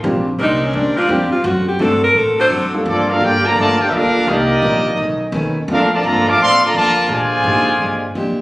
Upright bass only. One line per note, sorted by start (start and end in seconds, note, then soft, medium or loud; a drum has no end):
0.04 0.38 A#1 loud
0.39 0.73 C2 medium
0.73 1.08 D2 medium
1.09 1.30 F2 loud
1.31 muted upright bass stroke soft
1.44 1.78 F#2 loud
1.79 2.14 G2 loud
2.14 2.49 A2 medium
2.50 2.84 F#2 loud
2.85 3.20 G2 loud
3.21 3.55 G1 medium
3.56 3.90 G1 medium
3.91 4.12 D2 medium
4.14 muted upright bass stroke soft
4.27 4.61 C2 loud
4.62 4.96 A#1 loud
4.97 5.32 B1 medium
5.32 5.67 D#2 loud
5.68 6.02 F2 loud
6.03 6.37 G2 loud
6.38 6.73 A2 medium
6.74 7.08 F2 medium
7.09 7.43 A#2 loud
7.44 7.78 G#2 loud
7.79 8.13 G2 medium
8.15 8.41 F2 medium